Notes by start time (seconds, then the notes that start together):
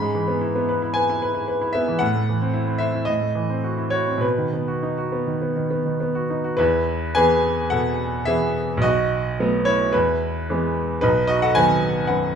Already playing: G#2 B5
0.02 G#3
0.15 E3
0.28 B3
0.41 E4
0.55 B3
0.69 B4
0.82 E4
0.94 B4 G#5
1.10 E4
1.22 B4
1.35 E4
1.48 B4
1.61 E4
1.73 B3 E5
1.88 E3
1.99 A2 F#5
2.15 A3
2.29 E3
2.42 C4
2.54 E4
2.67 C4
2.78 C5 E5
2.95 E4
3.05 A2 D#5
3.21 A3
3.35 E3
3.50 C4
3.64 F#4
3.78 E4
3.90 F#4 C#5
4.08 C4
4.18 B2 B4
4.38 D#3
4.53 B3
4.68 F#4
4.83 D#4
4.98 F#4
5.12 B3
5.27 D#3
5.42 B3
5.56 D#3
5.71 B3
5.86 D#3
6.00 B3
6.15 F#4
6.30 D#4
6.44 F#4
6.57 E2 E4 B4
7.15 E3 B3 G#4 B4 G#5
7.70 B2 A4 F#5
8.25 E3 B3 G#4 E5
8.77 B1
8.82 F#4 D#5
9.40 F#3 A3 B3
9.65 E4 C#5
9.93 E2 E4 B4
10.50 E3 G#3 B3
11.01 B1 D#4 B4
11.28 F#4 D#5
11.42 A4 F#5
11.55 D#3 F#3 B3 B4 G#5
12.07 F#2 B4 F#5